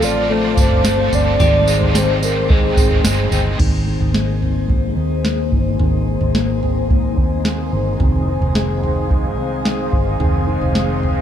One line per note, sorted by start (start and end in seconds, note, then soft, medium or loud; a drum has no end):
0.00 0.55 A1 medium
0.00 0.49 F3 medium
0.00 0.28 A3 medium
0.00 0.57 C4 medium
0.00 0.30 D4 soft
0.00 1.40 F4 medium
0.00 0.29 A4 medium
0.00 3.56 C5 medium
0.00 1.35 F5 medium
0.00 1.38 A5 medium
0.00 1.38 D6 medium
0.00 tambourine medium
0.04 0.29 C4 soft
0.04 0.34 D5 loud
0.28 0.56 D3 medium
0.28 0.57 F3 medium
0.28 0.84 A3 medium
0.28 0.57 C4 medium
0.28 0.57 D4 medium
0.28 0.58 C5 loud
0.33 0.54 A4 medium
0.55 1.09 G1 medium
0.55 1.11 C4 medium
0.55 0.85 D4 medium
0.55 0.84 A4 medium
0.55 kick medium
0.55 tambourine medium
0.60 0.83 C4 soft
0.60 1.16 C5 loud
0.71 floor tom medium
0.82 1.11 F3 medium
0.82 1.45 A3 medium
0.82 1.12 C4 medium
0.82 snare loud
0.82 tambourine medium
0.86 1.12 D4 medium
0.86 1.08 A4 medium
1.09 1.38 G1 loud
1.09 1.94 C4 medium
1.09 1.40 D4 medium
1.09 1.38 A4 medium
1.09 floor tom medium
1.09 tambourine medium
1.14 1.41 C4 soft
1.14 1.99 D5 loud
1.38 2.73 G#1 loud
1.38 1.66 G#2 medium
1.38 1.67 D#3 medium
1.38 3.59 D#3 medium
1.38 1.68 G3 medium
1.38 1.68 C4 medium
1.38 1.64 D#4 medium
1.38 2.22 G4 medium
1.38 3.58 G5 medium
1.38 floor tom loud
1.38 tambourine medium
1.66 2.49 G#3 medium
1.66 1.96 C4 soft
1.66 1.94 D#4 medium
1.66 tambourine medium
1.72 1.94 G3 soft
1.82 floor tom medium
1.93 2.21 D#3 medium
1.93 2.22 G3 medium
1.93 2.76 C4 medium
1.93 snare loud
1.93 tambourine loud
1.97 2.22 C4 medium
1.97 2.19 D#4 medium
1.97 2.26 C5 loud
2.20 2.50 C4 medium
2.20 2.49 D#4 medium
2.20 tambourine medium
2.24 2.49 G3 soft
2.24 2.53 A#4 medium
2.48 2.76 G#2 medium
2.48 2.77 D#3 medium
2.48 2.77 G3 medium
2.48 3.04 G#3 medium
2.48 2.78 C4 medium
2.48 3.33 G#4 medium
2.48 kick medium
2.48 floor tom medium
2.52 2.74 D#4 medium
2.76 3.03 G#1 medium
2.76 3.31 C4 medium
2.76 3.05 C4 medium
2.76 3.04 D#4 medium
2.76 kick medium
2.76 tambourine medium
2.81 3.04 G3 medium
2.91 floor tom medium
3.03 3.31 G1 medium
3.03 3.31 D#3 medium
3.03 3.32 G3 medium
3.03 4.14 G#3 medium
3.03 3.32 C4 medium
3.03 snare loud
3.03 tambourine loud
3.09 3.28 D#4 medium
3.29 3.58 G1 loud
3.29 3.59 C4 medium
3.29 3.60 C4 medium
3.29 3.58 D#4 medium
3.29 floor tom medium
3.29 tambourine medium
3.35 3.58 G3 medium
3.58 3.99 G#1 medium
3.58 3.86 D#3 medium
3.58 3.86 G#3 medium
3.58 3.87 A#3 medium
3.58 4.41 C4 medium
3.58 3.87 D#4 medium
3.58 3.87 G#4 medium
3.58 7.96 C5 medium
3.58 3.83 C5 medium
3.58 11.21 G#5 medium
3.58 7.96 A#5 medium
3.58 11.21 D#6 medium
3.58 kick medium
3.58 floor tom medium
3.58 crash medium
3.84 5.52 D#3 medium
3.84 4.15 G#4 soft
3.84 4.13 C5 medium
3.91 4.13 D#4 soft
4.00 4.93 G#1 medium
4.00 floor tom medium
4.12 4.41 A#3 medium
4.12 4.68 A#3 soft
4.12 4.42 D#4 medium
4.12 snare loud
4.16 4.42 G#4 medium
4.16 4.39 C5 medium
4.40 4.96 C4 medium
4.40 4.70 G#4 soft
4.40 4.69 C5 medium
4.40 floor tom medium
4.46 4.69 D#4 soft
4.67 4.96 G#3 medium
4.67 5.23 A#3 medium
4.67 4.97 A#3 medium
4.67 4.97 D#4 medium
4.67 4.97 G#4 medium
4.67 kick medium
4.67 floor tom medium
4.72 4.94 C5 medium
4.95 5.49 D#2 medium
4.95 5.80 C4 medium
4.95 5.25 G#4 soft
4.95 5.24 C5 medium
5.01 5.24 D#4 soft
5.23 5.51 A#3 medium
5.23 6.33 A#3 medium
5.23 5.53 D#4 medium
5.23 snare medium
5.27 5.52 G#4 medium
5.27 5.49 C5 medium
5.50 5.78 G1 medium
5.50 5.79 D#3 soft
5.50 5.81 G#4 medium
5.50 5.79 C5 medium
5.50 kick medium
5.56 5.80 D#4 medium
5.79 6.19 G#1 medium
5.79 6.06 D#3 medium
5.79 6.07 G#3 medium
5.79 6.08 A#3 medium
5.79 6.62 C4 medium
5.79 6.08 D#4 medium
5.79 6.08 G#4 medium
5.79 6.05 C5 medium
5.79 floor tom medium
6.06 6.36 G#4 soft
6.06 6.34 C5 medium
6.12 6.35 D#4 soft
6.21 7.13 G#1 medium
6.21 floor tom medium
6.34 6.62 A#3 medium
6.34 6.88 A#3 soft
6.34 6.63 D#4 medium
6.34 6.63 G#4 medium
6.34 snare medium
6.40 6.60 C5 medium
6.61 7.17 C4 medium
6.61 6.91 G#4 medium
6.61 6.89 C5 medium
6.61 floor tom medium
6.67 6.90 D#4 soft
6.90 7.17 G#3 medium
6.90 7.44 A#3 medium
6.90 7.18 A#3 medium
6.90 7.18 D#4 medium
6.90 7.18 G#4 medium
6.90 kick medium
6.90 floor tom medium
6.94 7.15 C5 medium
7.17 7.70 D#2 medium
7.17 8.00 C4 medium
7.17 7.46 G#4 medium
7.17 7.45 C5 medium
7.17 kick medium
7.22 7.45 D#4 soft
7.43 7.72 A#3 medium
7.43 8.05 A#3 medium
7.43 7.73 D#4 medium
7.43 snare loud
7.48 7.74 G#4 medium
7.48 7.71 C5 medium
7.72 7.99 G1 medium
7.72 7.99 D#3 soft
7.72 8.02 G#4 medium
7.72 8.00 C5 medium
7.78 8.01 D#4 soft
8.00 8.39 F1 medium
8.00 8.27 D#3 medium
8.00 8.28 F3 medium
8.00 8.82 C4 medium
8.00 8.28 C4 medium
8.00 8.29 D#4 medium
8.00 8.28 G#4 medium
8.00 11.21 C5 medium
8.00 11.21 F5 medium
8.00 kick loud
8.00 floor tom medium
8.04 8.25 C5 medium
8.26 9.92 D#3 medium
8.26 8.56 G#4 medium
8.26 8.54 C5 medium
8.32 8.55 D#4 soft
8.41 9.37 F1 medium
8.41 floor tom medium
8.54 9.10 G#3 medium
8.54 8.82 C4 medium
8.54 8.83 D#4 medium
8.54 8.83 G#4 medium
8.54 snare loud
8.60 8.80 C5 medium
8.82 9.38 C4 medium
8.82 9.11 G#4 soft
8.82 9.10 C5 medium
8.82 floor tom medium
8.87 9.11 D#4 soft
9.10 9.38 F3 medium
9.10 9.65 G#3 medium
9.10 9.38 C4 medium
9.10 9.39 D#4 medium
9.10 9.39 G#4 medium
9.10 kick medium
9.10 floor tom medium
9.14 9.36 C5 medium
9.37 9.90 C2 medium
9.37 10.20 C4 medium
9.37 9.67 G#4 medium
9.37 9.65 C5 medium
9.43 9.66 D#4 soft
9.64 10.74 G#3 medium
9.64 9.92 C4 medium
9.64 9.94 D#4 medium
9.64 9.93 G#4 medium
9.64 snare loud
9.70 9.90 C5 medium
9.92 10.19 G1 medium
9.92 10.20 D#3 medium
9.92 10.21 G#4 medium
9.92 10.20 C5 medium
9.92 kick medium
9.97 10.20 D#4 medium
10.19 10.59 F1 medium
10.19 10.47 D#3 medium
10.19 10.47 F3 medium
10.19 10.48 C4 medium
10.19 11.02 C4 medium
10.19 10.48 D#4 medium
10.19 10.48 G#4 medium
10.19 10.45 C5 medium
10.19 floor tom medium
10.46 11.21 D#3 medium
10.46 10.76 G#4 medium
10.46 10.74 C5 medium
10.52 10.75 D#4 soft
10.61 11.21 F1 medium
10.61 floor tom medium
10.74 11.21 G#3 medium
10.74 11.02 C4 medium
10.74 11.03 D#4 medium
10.74 11.03 G#4 medium
10.74 snare loud
10.80 11.00 C5 medium
11.01 11.21 C4 medium
11.01 11.21 G#4 soft
11.01 11.21 C5 medium
11.01 floor tom medium
11.07 11.21 D#4 soft